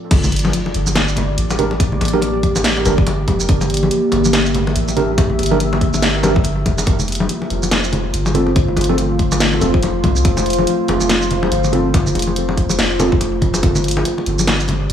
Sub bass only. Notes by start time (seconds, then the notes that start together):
0.11 G1
0.74 G1
1.38 A1
2.01 A1
2.86 G1
3.28 F1
3.49 G1
4.12 G1
4.76 A1
5.39 G1
6.66 F1
6.87 F1
7.50 F1
8.14 G1
8.77 G1
9.62 F1
10.04 C2
10.25 F1
10.88 F1
11.52 G1
12.15 F1
12.79 F1
13.63 G1
14.26 G1
14.90 A1